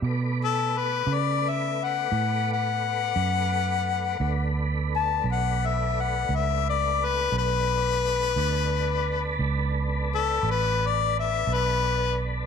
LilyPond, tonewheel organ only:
\new Staff \with { instrumentName = "Tonewheel organ" } { \time 12/8 \key b \minor \tempo 4. = 58 <a b b' d''>1. | <a b d' b'>1. | <b d' a' b'>1. | }